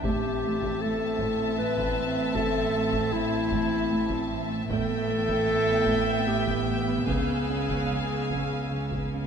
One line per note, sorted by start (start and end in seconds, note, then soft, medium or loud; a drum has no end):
0.03 4.66 A1 medium
0.03 4.66 A2 medium
0.03 0.28 A2 medium
0.03 4.66 C4 medium
0.03 0.83 G4 medium
0.03 4.65 E5 medium
0.03 4.66 A5 medium
0.03 taiko medium
0.44 0.66 A3 soft
0.62 taiko medium
0.82 1.05 A2 medium
0.82 1.58 A4 medium
1.20 1.43 A2 medium
1.20 taiko medium
1.58 1.81 A2 soft
1.58 2.37 B4 medium
1.77 taiko medium
1.98 2.20 A2 soft
2.35 2.58 A2 medium
2.35 3.14 A4 medium
2.35 taiko medium
2.74 2.97 A3 medium
2.93 taiko medium
3.12 3.36 A2 medium
3.12 4.41 E4 medium
3.51 3.75 A2 medium
3.51 taiko medium
3.90 4.14 A2 medium
4.10 taiko medium
4.30 4.54 A2 soft
4.69 7.04 A1 medium
4.69 4.93 A2 medium
4.69 7.04 A2 medium
4.69 9.27 B3 medium
4.69 6.29 A4 loud
4.69 7.04 E5 medium
4.69 7.05 G5 medium
4.69 9.08 E6 medium
4.69 7.38 G6 medium
4.69 taiko medium
5.09 5.32 A3 soft
5.28 taiko medium
5.47 5.71 A2 soft
5.86 6.10 A2 medium
5.86 taiko medium
6.26 6.50 A2 soft
6.26 7.08 G4 medium
6.47 taiko medium
6.66 6.91 A2 soft
7.07 9.27 C#2 soft
7.07 7.32 C#3 medium
7.07 9.27 C#3 soft
7.07 9.08 G#4 medium
7.07 9.27 F5 soft
7.07 9.27 G#5 soft
7.07 taiko medium
7.38 8.27 F#6 medium
7.49 7.74 C#4 soft
7.69 taiko medium
7.91 8.15 C#3 soft
8.30 8.55 C#3 soft
8.30 taiko medium
8.72 8.96 C#3 soft
8.91 taiko medium
9.12 9.27 C#3 soft